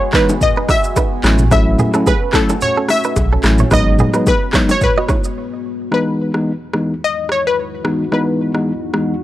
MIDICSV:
0, 0, Header, 1, 7, 480
1, 0, Start_track
1, 0, Key_signature, 4, "major"
1, 0, Tempo, 550459
1, 1321, Time_signature, 4, 2, 24, 8
1, 8053, End_track
2, 0, Start_track
2, 0, Title_t, "Synth pluck"
2, 0, Program_c, 0, 84
2, 0, Note_on_c, 0, 73, 100
2, 131, Note_on_c, 0, 71, 96
2, 133, Note_off_c, 0, 73, 0
2, 372, Note_on_c, 0, 75, 105
2, 373, Note_off_c, 0, 71, 0
2, 614, Note_off_c, 0, 75, 0
2, 614, Note_on_c, 0, 76, 95
2, 1054, Note_off_c, 0, 76, 0
2, 1327, Note_on_c, 0, 76, 119
2, 1808, Note_on_c, 0, 71, 98
2, 1818, Note_off_c, 0, 76, 0
2, 2049, Note_on_c, 0, 69, 89
2, 2052, Note_off_c, 0, 71, 0
2, 2287, Note_on_c, 0, 73, 103
2, 2292, Note_off_c, 0, 69, 0
2, 2531, Note_off_c, 0, 73, 0
2, 2531, Note_on_c, 0, 76, 93
2, 2973, Note_off_c, 0, 76, 0
2, 3256, Note_on_c, 0, 75, 115
2, 3696, Note_off_c, 0, 75, 0
2, 3733, Note_on_c, 0, 71, 96
2, 4109, Note_on_c, 0, 73, 89
2, 4110, Note_off_c, 0, 71, 0
2, 4212, Note_off_c, 0, 73, 0
2, 4217, Note_on_c, 0, 71, 85
2, 4894, Note_off_c, 0, 71, 0
2, 5179, Note_on_c, 0, 71, 81
2, 6142, Note_on_c, 0, 75, 107
2, 6158, Note_off_c, 0, 71, 0
2, 6378, Note_off_c, 0, 75, 0
2, 6380, Note_on_c, 0, 73, 95
2, 6506, Note_off_c, 0, 73, 0
2, 6513, Note_on_c, 0, 71, 80
2, 6827, Note_off_c, 0, 71, 0
2, 7094, Note_on_c, 0, 71, 82
2, 8053, Note_off_c, 0, 71, 0
2, 8053, End_track
3, 0, Start_track
3, 0, Title_t, "Clean electric guitar"
3, 0, Program_c, 1, 27
3, 129, Note_on_c, 1, 71, 79
3, 136, Note_on_c, 1, 63, 64
3, 220, Note_off_c, 1, 71, 0
3, 225, Note_off_c, 1, 63, 0
3, 500, Note_on_c, 1, 71, 80
3, 507, Note_on_c, 1, 63, 64
3, 575, Note_off_c, 1, 71, 0
3, 579, Note_off_c, 1, 63, 0
3, 609, Note_on_c, 1, 75, 90
3, 616, Note_on_c, 1, 66, 73
3, 700, Note_off_c, 1, 75, 0
3, 705, Note_off_c, 1, 66, 0
3, 849, Note_on_c, 1, 71, 81
3, 856, Note_on_c, 1, 63, 66
3, 1018, Note_off_c, 1, 71, 0
3, 1023, Note_off_c, 1, 63, 0
3, 1329, Note_on_c, 1, 69, 81
3, 1335, Note_on_c, 1, 61, 64
3, 1421, Note_off_c, 1, 69, 0
3, 1425, Note_off_c, 1, 61, 0
3, 1566, Note_on_c, 1, 68, 88
3, 1574, Note_on_c, 1, 59, 71
3, 1659, Note_off_c, 1, 68, 0
3, 1664, Note_off_c, 1, 59, 0
3, 1699, Note_on_c, 1, 69, 90
3, 1707, Note_on_c, 1, 61, 67
3, 1774, Note_off_c, 1, 69, 0
3, 1779, Note_off_c, 1, 61, 0
3, 1806, Note_on_c, 1, 68, 86
3, 1813, Note_on_c, 1, 61, 67
3, 1899, Note_off_c, 1, 68, 0
3, 1903, Note_off_c, 1, 61, 0
3, 2047, Note_on_c, 1, 69, 80
3, 2053, Note_on_c, 1, 61, 63
3, 2139, Note_off_c, 1, 69, 0
3, 2144, Note_off_c, 1, 61, 0
3, 2179, Note_on_c, 1, 69, 75
3, 2186, Note_on_c, 1, 61, 57
3, 2254, Note_off_c, 1, 69, 0
3, 2259, Note_off_c, 1, 61, 0
3, 2419, Note_on_c, 1, 69, 82
3, 2426, Note_on_c, 1, 61, 68
3, 2494, Note_off_c, 1, 69, 0
3, 2499, Note_off_c, 1, 61, 0
3, 2658, Note_on_c, 1, 71, 76
3, 2665, Note_on_c, 1, 63, 57
3, 2734, Note_off_c, 1, 71, 0
3, 2738, Note_off_c, 1, 63, 0
3, 2900, Note_on_c, 1, 69, 73
3, 2907, Note_on_c, 1, 61, 62
3, 2975, Note_off_c, 1, 69, 0
3, 2979, Note_off_c, 1, 61, 0
3, 3140, Note_on_c, 1, 73, 83
3, 3147, Note_on_c, 1, 64, 62
3, 3215, Note_off_c, 1, 73, 0
3, 3219, Note_off_c, 1, 64, 0
3, 3248, Note_on_c, 1, 71, 88
3, 3254, Note_on_c, 1, 63, 68
3, 3340, Note_off_c, 1, 71, 0
3, 3344, Note_off_c, 1, 63, 0
3, 3489, Note_on_c, 1, 68, 90
3, 3495, Note_on_c, 1, 59, 73
3, 3581, Note_off_c, 1, 68, 0
3, 3585, Note_off_c, 1, 59, 0
3, 3620, Note_on_c, 1, 71, 80
3, 3627, Note_on_c, 1, 63, 59
3, 3695, Note_off_c, 1, 71, 0
3, 3699, Note_off_c, 1, 63, 0
3, 3968, Note_on_c, 1, 73, 80
3, 3975, Note_on_c, 1, 64, 61
3, 4060, Note_off_c, 1, 73, 0
3, 4064, Note_off_c, 1, 64, 0
3, 4339, Note_on_c, 1, 75, 79
3, 4347, Note_on_c, 1, 66, 61
3, 4414, Note_off_c, 1, 75, 0
3, 4419, Note_off_c, 1, 66, 0
3, 4447, Note_on_c, 1, 73, 88
3, 4454, Note_on_c, 1, 64, 67
3, 4540, Note_off_c, 1, 73, 0
3, 4544, Note_off_c, 1, 64, 0
3, 8053, End_track
4, 0, Start_track
4, 0, Title_t, "Ambient pad"
4, 0, Program_c, 2, 92
4, 0, Note_on_c, 2, 56, 78
4, 0, Note_on_c, 2, 59, 71
4, 0, Note_on_c, 2, 66, 88
4, 0, Note_on_c, 2, 68, 85
4, 1044, Note_off_c, 2, 59, 0
4, 1045, Note_off_c, 2, 56, 0
4, 1046, Note_off_c, 2, 68, 0
4, 1085, Note_on_c, 2, 57, 82
4, 1085, Note_on_c, 2, 61, 75
4, 3221, Note_off_c, 2, 57, 0
4, 3222, Note_off_c, 2, 61, 0
4, 3241, Note_on_c, 2, 56, 79
4, 3242, Note_on_c, 2, 59, 73
4, 5127, Note_off_c, 2, 66, 0
4, 5142, Note_off_c, 2, 56, 0
4, 5142, Note_off_c, 2, 59, 0
4, 5157, Note_on_c, 2, 40, 75
4, 5157, Note_on_c, 2, 63, 70
4, 5157, Note_on_c, 2, 66, 81
4, 5158, Note_on_c, 2, 52, 68
4, 5158, Note_on_c, 2, 56, 67
4, 8053, Note_off_c, 2, 40, 0
4, 8053, Note_off_c, 2, 52, 0
4, 8053, Note_off_c, 2, 56, 0
4, 8053, Note_off_c, 2, 63, 0
4, 8053, Note_off_c, 2, 66, 0
4, 8053, End_track
5, 0, Start_track
5, 0, Title_t, "Tine electric piano"
5, 0, Program_c, 3, 4
5, 119, Note_on_c, 3, 52, 80
5, 122, Note_on_c, 3, 56, 73
5, 123, Note_on_c, 3, 59, 69
5, 125, Note_on_c, 3, 63, 87
5, 282, Note_off_c, 3, 52, 0
5, 283, Note_off_c, 3, 56, 0
5, 283, Note_off_c, 3, 59, 0
5, 285, Note_off_c, 3, 63, 0
5, 1078, Note_on_c, 3, 54, 80
5, 1081, Note_on_c, 3, 57, 78
5, 1082, Note_on_c, 3, 61, 72
5, 1084, Note_on_c, 3, 64, 88
5, 1241, Note_off_c, 3, 54, 0
5, 1243, Note_off_c, 3, 57, 0
5, 1243, Note_off_c, 3, 61, 0
5, 1244, Note_off_c, 3, 64, 0
5, 1319, Note_on_c, 3, 54, 100
5, 1321, Note_on_c, 3, 57, 88
5, 1322, Note_on_c, 3, 61, 90
5, 1324, Note_on_c, 3, 64, 108
5, 1660, Note_off_c, 3, 54, 0
5, 1661, Note_off_c, 3, 57, 0
5, 1662, Note_off_c, 3, 61, 0
5, 1663, Note_off_c, 3, 64, 0
5, 1690, Note_on_c, 3, 54, 76
5, 1692, Note_on_c, 3, 57, 73
5, 1694, Note_on_c, 3, 61, 73
5, 1695, Note_on_c, 3, 64, 90
5, 1836, Note_off_c, 3, 54, 0
5, 1837, Note_off_c, 3, 57, 0
5, 1838, Note_off_c, 3, 61, 0
5, 1838, Note_off_c, 3, 64, 0
5, 2036, Note_on_c, 3, 54, 75
5, 2038, Note_on_c, 3, 57, 71
5, 2041, Note_on_c, 3, 61, 73
5, 2042, Note_on_c, 3, 64, 87
5, 2200, Note_off_c, 3, 54, 0
5, 2201, Note_off_c, 3, 57, 0
5, 2202, Note_off_c, 3, 61, 0
5, 2203, Note_off_c, 3, 64, 0
5, 2998, Note_on_c, 3, 54, 80
5, 2998, Note_on_c, 3, 57, 76
5, 3001, Note_on_c, 3, 61, 74
5, 3002, Note_on_c, 3, 64, 89
5, 3161, Note_off_c, 3, 54, 0
5, 3161, Note_off_c, 3, 57, 0
5, 3162, Note_off_c, 3, 61, 0
5, 3163, Note_off_c, 3, 64, 0
5, 3237, Note_on_c, 3, 54, 97
5, 3238, Note_on_c, 3, 56, 90
5, 3239, Note_on_c, 3, 59, 88
5, 3242, Note_on_c, 3, 63, 109
5, 3579, Note_off_c, 3, 54, 0
5, 3580, Note_off_c, 3, 56, 0
5, 3580, Note_off_c, 3, 59, 0
5, 3582, Note_off_c, 3, 63, 0
5, 3608, Note_on_c, 3, 54, 75
5, 3611, Note_on_c, 3, 56, 71
5, 3612, Note_on_c, 3, 59, 68
5, 3614, Note_on_c, 3, 63, 87
5, 3755, Note_off_c, 3, 54, 0
5, 3756, Note_off_c, 3, 56, 0
5, 3757, Note_off_c, 3, 59, 0
5, 3758, Note_off_c, 3, 63, 0
5, 3956, Note_on_c, 3, 54, 77
5, 3958, Note_on_c, 3, 56, 72
5, 3961, Note_on_c, 3, 59, 74
5, 3961, Note_on_c, 3, 63, 87
5, 4120, Note_off_c, 3, 54, 0
5, 4121, Note_off_c, 3, 56, 0
5, 4122, Note_off_c, 3, 59, 0
5, 4123, Note_off_c, 3, 63, 0
5, 5159, Note_on_c, 3, 52, 81
5, 5160, Note_on_c, 3, 56, 78
5, 5161, Note_on_c, 3, 59, 80
5, 5164, Note_on_c, 3, 63, 98
5, 5500, Note_off_c, 3, 52, 0
5, 5501, Note_off_c, 3, 56, 0
5, 5501, Note_off_c, 3, 59, 0
5, 5503, Note_off_c, 3, 63, 0
5, 5530, Note_on_c, 3, 52, 68
5, 5532, Note_on_c, 3, 56, 63
5, 5533, Note_on_c, 3, 59, 62
5, 5535, Note_on_c, 3, 63, 76
5, 5676, Note_off_c, 3, 52, 0
5, 5677, Note_off_c, 3, 56, 0
5, 5677, Note_off_c, 3, 59, 0
5, 5678, Note_off_c, 3, 63, 0
5, 5876, Note_on_c, 3, 52, 70
5, 5878, Note_on_c, 3, 56, 62
5, 5880, Note_on_c, 3, 59, 63
5, 5882, Note_on_c, 3, 63, 78
5, 6040, Note_off_c, 3, 52, 0
5, 6041, Note_off_c, 3, 56, 0
5, 6042, Note_off_c, 3, 59, 0
5, 6043, Note_off_c, 3, 63, 0
5, 6837, Note_on_c, 3, 52, 73
5, 6839, Note_on_c, 3, 56, 66
5, 6841, Note_on_c, 3, 59, 66
5, 6842, Note_on_c, 3, 63, 80
5, 7001, Note_off_c, 3, 52, 0
5, 7002, Note_off_c, 3, 56, 0
5, 7003, Note_off_c, 3, 59, 0
5, 7003, Note_off_c, 3, 63, 0
5, 7080, Note_on_c, 3, 52, 88
5, 7082, Note_on_c, 3, 56, 78
5, 7083, Note_on_c, 3, 59, 81
5, 7085, Note_on_c, 3, 63, 94
5, 7421, Note_off_c, 3, 52, 0
5, 7422, Note_off_c, 3, 56, 0
5, 7422, Note_off_c, 3, 59, 0
5, 7423, Note_off_c, 3, 63, 0
5, 7447, Note_on_c, 3, 52, 68
5, 7449, Note_on_c, 3, 56, 61
5, 7450, Note_on_c, 3, 59, 64
5, 7453, Note_on_c, 3, 63, 76
5, 7594, Note_off_c, 3, 52, 0
5, 7595, Note_off_c, 3, 56, 0
5, 7596, Note_off_c, 3, 59, 0
5, 7597, Note_off_c, 3, 63, 0
5, 7797, Note_on_c, 3, 52, 71
5, 7798, Note_on_c, 3, 56, 66
5, 7800, Note_on_c, 3, 59, 64
5, 7800, Note_on_c, 3, 63, 76
5, 7961, Note_off_c, 3, 52, 0
5, 7961, Note_off_c, 3, 56, 0
5, 7962, Note_off_c, 3, 59, 0
5, 7962, Note_off_c, 3, 63, 0
5, 8053, End_track
6, 0, Start_track
6, 0, Title_t, "Sub bass"
6, 0, Program_c, 4, 38
6, 1078, Note_on_c, 4, 33, 100
6, 1522, Note_off_c, 4, 33, 0
6, 2758, Note_on_c, 4, 35, 93
6, 2933, Note_off_c, 4, 35, 0
6, 2998, Note_on_c, 4, 33, 99
6, 3173, Note_off_c, 4, 33, 0
6, 3238, Note_on_c, 4, 32, 105
6, 3508, Note_off_c, 4, 32, 0
6, 8053, End_track
7, 0, Start_track
7, 0, Title_t, "Drums"
7, 113, Note_on_c, 9, 37, 104
7, 113, Note_on_c, 9, 39, 111
7, 117, Note_on_c, 9, 82, 56
7, 118, Note_on_c, 9, 36, 90
7, 127, Note_on_c, 9, 61, 63
7, 200, Note_off_c, 9, 37, 0
7, 200, Note_off_c, 9, 39, 0
7, 204, Note_off_c, 9, 82, 0
7, 205, Note_off_c, 9, 36, 0
7, 215, Note_off_c, 9, 61, 0
7, 254, Note_on_c, 9, 82, 90
7, 257, Note_on_c, 9, 60, 60
7, 257, Note_on_c, 9, 61, 91
7, 341, Note_off_c, 9, 82, 0
7, 344, Note_off_c, 9, 60, 0
7, 344, Note_off_c, 9, 61, 0
7, 359, Note_on_c, 9, 36, 92
7, 360, Note_on_c, 9, 82, 82
7, 368, Note_on_c, 9, 64, 81
7, 446, Note_off_c, 9, 36, 0
7, 447, Note_off_c, 9, 82, 0
7, 455, Note_off_c, 9, 64, 0
7, 598, Note_on_c, 9, 37, 96
7, 601, Note_on_c, 9, 36, 94
7, 601, Note_on_c, 9, 46, 54
7, 601, Note_on_c, 9, 82, 55
7, 607, Note_on_c, 9, 61, 78
7, 685, Note_off_c, 9, 37, 0
7, 688, Note_off_c, 9, 36, 0
7, 688, Note_off_c, 9, 46, 0
7, 688, Note_off_c, 9, 82, 0
7, 695, Note_off_c, 9, 61, 0
7, 732, Note_on_c, 9, 82, 83
7, 819, Note_off_c, 9, 82, 0
7, 840, Note_on_c, 9, 36, 87
7, 840, Note_on_c, 9, 60, 90
7, 840, Note_on_c, 9, 82, 97
7, 927, Note_off_c, 9, 36, 0
7, 927, Note_off_c, 9, 60, 0
7, 927, Note_off_c, 9, 82, 0
7, 1079, Note_on_c, 9, 82, 57
7, 1083, Note_on_c, 9, 37, 106
7, 1083, Note_on_c, 9, 39, 106
7, 1166, Note_off_c, 9, 82, 0
7, 1170, Note_off_c, 9, 37, 0
7, 1170, Note_off_c, 9, 39, 0
7, 1208, Note_on_c, 9, 82, 80
7, 1215, Note_on_c, 9, 45, 98
7, 1295, Note_off_c, 9, 82, 0
7, 1302, Note_off_c, 9, 45, 0
7, 1319, Note_on_c, 9, 37, 99
7, 1319, Note_on_c, 9, 82, 79
7, 1320, Note_on_c, 9, 36, 126
7, 1325, Note_on_c, 9, 64, 76
7, 1406, Note_off_c, 9, 82, 0
7, 1407, Note_off_c, 9, 36, 0
7, 1407, Note_off_c, 9, 37, 0
7, 1412, Note_off_c, 9, 64, 0
7, 1557, Note_on_c, 9, 45, 104
7, 1560, Note_on_c, 9, 82, 56
7, 1562, Note_on_c, 9, 60, 53
7, 1562, Note_on_c, 9, 64, 77
7, 1644, Note_off_c, 9, 45, 0
7, 1647, Note_off_c, 9, 82, 0
7, 1649, Note_off_c, 9, 60, 0
7, 1649, Note_off_c, 9, 64, 0
7, 1689, Note_on_c, 9, 37, 104
7, 1691, Note_on_c, 9, 82, 79
7, 1776, Note_off_c, 9, 37, 0
7, 1778, Note_off_c, 9, 82, 0
7, 1801, Note_on_c, 9, 36, 104
7, 1801, Note_on_c, 9, 82, 85
7, 1808, Note_on_c, 9, 60, 79
7, 1888, Note_off_c, 9, 36, 0
7, 1889, Note_off_c, 9, 82, 0
7, 1895, Note_off_c, 9, 60, 0
7, 2031, Note_on_c, 9, 37, 111
7, 2031, Note_on_c, 9, 39, 103
7, 2036, Note_on_c, 9, 82, 55
7, 2037, Note_on_c, 9, 36, 94
7, 2046, Note_on_c, 9, 61, 63
7, 2119, Note_off_c, 9, 37, 0
7, 2119, Note_off_c, 9, 39, 0
7, 2123, Note_off_c, 9, 82, 0
7, 2124, Note_off_c, 9, 36, 0
7, 2133, Note_off_c, 9, 61, 0
7, 2173, Note_on_c, 9, 82, 90
7, 2177, Note_on_c, 9, 60, 64
7, 2177, Note_on_c, 9, 61, 85
7, 2260, Note_off_c, 9, 82, 0
7, 2264, Note_off_c, 9, 60, 0
7, 2264, Note_off_c, 9, 61, 0
7, 2277, Note_on_c, 9, 82, 80
7, 2288, Note_on_c, 9, 64, 81
7, 2364, Note_off_c, 9, 82, 0
7, 2376, Note_off_c, 9, 64, 0
7, 2515, Note_on_c, 9, 37, 102
7, 2519, Note_on_c, 9, 46, 52
7, 2519, Note_on_c, 9, 82, 53
7, 2528, Note_on_c, 9, 61, 78
7, 2603, Note_off_c, 9, 37, 0
7, 2606, Note_off_c, 9, 46, 0
7, 2606, Note_off_c, 9, 82, 0
7, 2615, Note_off_c, 9, 61, 0
7, 2649, Note_on_c, 9, 82, 76
7, 2737, Note_off_c, 9, 82, 0
7, 2758, Note_on_c, 9, 36, 92
7, 2758, Note_on_c, 9, 60, 89
7, 2758, Note_on_c, 9, 82, 97
7, 2845, Note_off_c, 9, 36, 0
7, 2845, Note_off_c, 9, 82, 0
7, 2846, Note_off_c, 9, 60, 0
7, 2994, Note_on_c, 9, 82, 62
7, 2998, Note_on_c, 9, 37, 116
7, 2998, Note_on_c, 9, 39, 111
7, 3082, Note_off_c, 9, 82, 0
7, 3085, Note_off_c, 9, 37, 0
7, 3085, Note_off_c, 9, 39, 0
7, 3124, Note_on_c, 9, 82, 80
7, 3131, Note_on_c, 9, 45, 95
7, 3211, Note_off_c, 9, 82, 0
7, 3218, Note_off_c, 9, 45, 0
7, 3235, Note_on_c, 9, 37, 103
7, 3235, Note_on_c, 9, 82, 78
7, 3238, Note_on_c, 9, 36, 126
7, 3244, Note_on_c, 9, 64, 75
7, 3322, Note_off_c, 9, 37, 0
7, 3322, Note_off_c, 9, 82, 0
7, 3325, Note_off_c, 9, 36, 0
7, 3331, Note_off_c, 9, 64, 0
7, 3474, Note_on_c, 9, 45, 100
7, 3478, Note_on_c, 9, 60, 54
7, 3478, Note_on_c, 9, 64, 70
7, 3478, Note_on_c, 9, 82, 54
7, 3562, Note_off_c, 9, 45, 0
7, 3565, Note_off_c, 9, 60, 0
7, 3565, Note_off_c, 9, 64, 0
7, 3565, Note_off_c, 9, 82, 0
7, 3606, Note_on_c, 9, 37, 99
7, 3609, Note_on_c, 9, 82, 78
7, 3694, Note_off_c, 9, 37, 0
7, 3696, Note_off_c, 9, 82, 0
7, 3719, Note_on_c, 9, 82, 86
7, 3720, Note_on_c, 9, 36, 101
7, 3723, Note_on_c, 9, 60, 84
7, 3806, Note_off_c, 9, 82, 0
7, 3808, Note_off_c, 9, 36, 0
7, 3810, Note_off_c, 9, 60, 0
7, 3951, Note_on_c, 9, 37, 102
7, 3951, Note_on_c, 9, 39, 106
7, 3955, Note_on_c, 9, 82, 56
7, 3957, Note_on_c, 9, 36, 92
7, 3961, Note_on_c, 9, 61, 64
7, 4038, Note_off_c, 9, 37, 0
7, 4038, Note_off_c, 9, 39, 0
7, 4042, Note_off_c, 9, 82, 0
7, 4044, Note_off_c, 9, 36, 0
7, 4048, Note_off_c, 9, 61, 0
7, 4090, Note_on_c, 9, 60, 62
7, 4090, Note_on_c, 9, 61, 86
7, 4092, Note_on_c, 9, 82, 87
7, 4177, Note_off_c, 9, 60, 0
7, 4177, Note_off_c, 9, 61, 0
7, 4179, Note_off_c, 9, 82, 0
7, 4196, Note_on_c, 9, 82, 78
7, 4198, Note_on_c, 9, 36, 90
7, 4203, Note_on_c, 9, 64, 82
7, 4283, Note_off_c, 9, 82, 0
7, 4285, Note_off_c, 9, 36, 0
7, 4290, Note_off_c, 9, 64, 0
7, 4434, Note_on_c, 9, 37, 100
7, 4438, Note_on_c, 9, 82, 51
7, 4439, Note_on_c, 9, 36, 91
7, 4444, Note_on_c, 9, 61, 76
7, 4521, Note_off_c, 9, 37, 0
7, 4525, Note_off_c, 9, 82, 0
7, 4526, Note_off_c, 9, 36, 0
7, 4531, Note_off_c, 9, 61, 0
7, 4570, Note_on_c, 9, 82, 82
7, 4657, Note_off_c, 9, 82, 0
7, 5161, Note_on_c, 9, 37, 91
7, 5248, Note_off_c, 9, 37, 0
7, 5530, Note_on_c, 9, 37, 86
7, 5617, Note_off_c, 9, 37, 0
7, 5872, Note_on_c, 9, 37, 100
7, 5960, Note_off_c, 9, 37, 0
7, 6358, Note_on_c, 9, 37, 88
7, 6445, Note_off_c, 9, 37, 0
7, 6842, Note_on_c, 9, 37, 102
7, 6930, Note_off_c, 9, 37, 0
7, 7081, Note_on_c, 9, 37, 88
7, 7168, Note_off_c, 9, 37, 0
7, 7451, Note_on_c, 9, 37, 90
7, 7538, Note_off_c, 9, 37, 0
7, 7792, Note_on_c, 9, 37, 99
7, 7880, Note_off_c, 9, 37, 0
7, 8053, End_track
0, 0, End_of_file